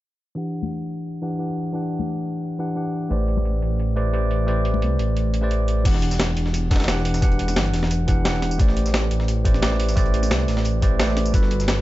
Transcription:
0.35 E3 D4 G4 F#5
0.63 high conga
1.22 E3 D4 G4 F#5
1.39 E3 D4 G4 F#5
1.73 E3 D4 G4 F#5
2.00 high conga
2.59 E3 D4 G4 F#5
2.76 E3 D4 G4 F#5
3.09 A1 A3 G4 B4 C5 D5, closed hi-hat
3.28 closed hi-hat
3.37 high conga
3.45 closed hi-hat
3.62 A1, closed hi-hat
3.79 closed hi-hat
3.96 A3 G4 B4 C5 D5, closed hi-hat
4.13 A3 G4 B4 C5 D5, closed hi-hat
4.31 closed hi-hat
4.46 A1 A3 G4 B4 C5 D5, closed hi-hat
4.65 closed hi-hat
4.74 high conga
4.82 C2, closed hi-hat
4.99 A1, closed hi-hat
5.17 closed hi-hat
5.34 closed hi-hat
5.41 A3 G4 B4 C5 D5
5.51 closed hi-hat
5.68 closed hi-hat
5.84 E1 E3 D4 G4 F#5, kick, closed hi-hat, crash, tambourine
5.94 snare
6.02 closed hi-hat
6.11 snare, tambourine
6.20 snare, closed hi-hat, tambourine
6.37 E1, closed hi-hat
6.46 snare
6.54 closed hi-hat, tambourine
6.70 E3 D4 G4 F#5, kick, snare, closed hi-hat, tambourine
6.76 snare, closed hi-hat
6.80 snare, closed hi-hat
6.84 E3 D4, snare, closed hi-hat
6.88 G4 F#5, snare, closed hi-hat, tambourine
6.97 snare
7.05 closed hi-hat, open hi-hat, tambourine
7.14 snare, tambourine
7.21 E1 E3 D4 G4 F#5, kick, closed hi-hat, tambourine
7.32 closed hi-hat
7.39 closed hi-hat
7.48 snare, tambourine
7.56 G1, snare, closed hi-hat, tambourine
7.66 closed hi-hat
7.74 E1, snare, closed hi-hat, open hi-hat
7.83 snare
7.91 closed hi-hat, tambourine
8.07 E3 D4 G4 F#5, kick, closed hi-hat, tambourine
8.25 E3 D4 G4 F#5, snare, closed hi-hat, tambourine
8.34 snare
8.42 snare, closed hi-hat, open hi-hat, tambourine
8.51 tambourine
8.58 A1 A3 G4 B4 C5 D5, kick, closed hi-hat, tambourine
8.68 snare
8.77 closed hi-hat
8.86 snare, tambourine
8.94 snare, closed hi-hat, tambourine
9.11 A1, closed hi-hat
9.20 snare
9.28 closed hi-hat, tambourine
9.44 A3 G4 B4 C5 D5, kick, closed hi-hat, tambourine
9.54 snare
9.61 A3 G4 B4 C5 D5, snare, closed hi-hat, tambourine
9.72 snare
9.80 closed hi-hat, open hi-hat, tambourine
9.89 snare, tambourine
9.95 A1 A3 G4 B4 C5 D5, kick, closed hi-hat, tambourine
10.06 closed hi-hat
10.14 closed hi-hat, tambourine
10.23 snare, tambourine
10.31 C2, snare, closed hi-hat, tambourine
10.40 closed hi-hat
10.48 A1, snare, closed hi-hat, open hi-hat, tambourine
10.57 snare
10.65 closed hi-hat, tambourine
10.82 A3 G4 B4 C5 D5, kick, closed hi-hat, tambourine
10.99 A3 G4 B4 C5 D5, snare, closed hi-hat, tambourine
11.09 snare
11.17 snare, closed hi-hat, open hi-hat, tambourine
11.26 tambourine
11.32 G1 G3 F#4 A4 B4, kick, closed hi-hat, tambourine
11.43 snare
11.51 closed hi-hat
11.60 snare, tambourine
11.68 snare, closed hi-hat, tambourine

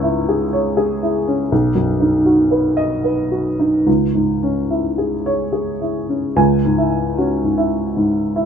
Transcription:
Already playing: C#2 G#2 C#4 C#6 E6 G#6
0.03 E4
0.29 G#4
0.53 C#5
0.77 G#4
1.03 E4
1.27 C#4
1.52 B1
1.75 F#2
2.00 D#4
2.26 F#4
2.51 B4
2.77 D#5
3.04 B4
3.32 F#4
3.59 D#4
3.86 C#2
4.15 G#2
4.43 C#4
4.70 E4
4.98 G#4
5.26 C#5
5.52 G#4
5.81 E4
6.09 C#4
6.36 C#2 G#5
6.65 G#2
6.78 E4
7.18 C#4 F#4
7.44 G#2
7.58 E4
7.97 G#2
8.36 E4

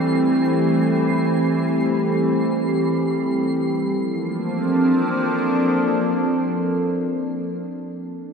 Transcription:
Already playing: E3 G3 A3 C4 G4 C7
3.65 F3
3.82 A#3
3.98 C4
4.14 D4
4.32 A4

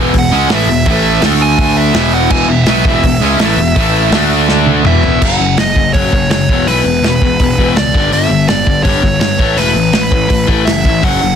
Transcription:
Already playing: E1 E2 B2 E3
0.14 E1 E2 B2, kick, open hi-hat
0.19 F#5
0.31 C#2 C#3 G#3 C#4
0.50 A1 A2 E3 A3 E5, snare, open hi-hat
0.67 E1 E2 B2
0.86 A1 A2 E3 A3 E5, kick, open hi-hat
1.21 D2 D3 A3 D4, snare, open hi-hat
1.42 G#5
1.59 kick, open hi-hat
1.77 E5
1.94 E1 E2 B2 E3, snare, open hi-hat
2.14 F#5
2.30 E1 E2 B2 E3 G#5, kick, crash
2.48 E1 E2 B2 E5
2.65 B1 B2 F#3 B3, snare, open hi-hat
2.85 E1 E2 B2 E3, kick
3.03 E1 E2 B2, kick, open hi-hat
3.19 C#2 C#3 G#3
3.24 C#4
3.38 A1 A2 E3 A3, snare, open hi-hat
3.57 E1 E2 B2
3.76 A1 A2 E3 A3, kick, open hi-hat
4.11 D2 D3 A3 D4, snare, open hi-hat
4.49 snare
4.66 high tom
4.84 E1 E2 E5, mid tom
4.88 B2 E3
5.04 floor tom
5.22 F#1 F#2 C#3 F#3 F#5, kick, crash
5.39 F#1 F#2 C#3
5.57 F#1 F#2 C#3 D#5, snare, open hi-hat
5.76 F#2 C#3, kick
5.93 F#1 F#2 C#3 C#5, kick, open hi-hat
5.97 F#3
6.12 F#1 F#2 C#3, kick
6.30 F#1 F#2 C#3 C#5, snare, open hi-hat
6.49 E1 E2 B2 E3, kick
6.66 B1 E2 B2 E3 B4, open hi-hat
6.84 E1 E2 B2
7.02 E1 E2 B2, snare, open hi-hat
7.21 E1 E2 B2, kick
7.40 E1 E2 B2, kick, open hi-hat
7.58 E1 E2 B2 E3, kick
7.76 C#2 E2 B2 D5, snare, open hi-hat
7.94 G1 G2 D3 G3, kick
8.12 G1 G2 D3 G3 E5, open hi-hat
8.29 G1 G2 D3
8.48 G1 G2 D3 D5, snare, open hi-hat
8.66 G2 D3, kick
8.83 G1 G2 D3 G3 C#5, kick, open hi-hat
9.03 G1 G2 D3, kick
9.20 G1 G2 D3 C#5, snare, open hi-hat
9.39 A1 A2 E3 A3, kick
9.57 E1 A2 E3 A3 B4, open hi-hat
9.75 A1 A2 E3
9.93 A1 A2 E3, snare, open hi-hat
10.11 A1 A2 E3, kick
10.28 A1 A2 E3, kick, open hi-hat
10.47 A1 A2 E3 A3, kick
10.65 F#1 A2 E3 E5, snare, open hi-hat
10.85 A1 A2 E3, kick
11.02 F#1 F#2 C#3 F#3 F#5, kick, open hi-hat
11.22 F#1 F#2 C#3

